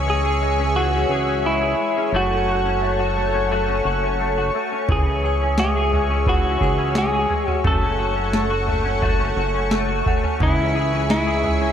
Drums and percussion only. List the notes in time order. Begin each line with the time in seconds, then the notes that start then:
4.89 kick, floor tom
5.58 snare
5.93 floor tom
6.26 kick, floor tom
6.61 kick
6.95 snare
7.30 floor tom
7.48 floor tom
7.64 kick, floor tom
8.33 snare
8.68 floor tom
9.02 kick, floor tom
9.71 snare
10.06 kick, floor tom
10.23 floor tom
10.40 kick, floor tom
11.10 snare
11.44 floor tom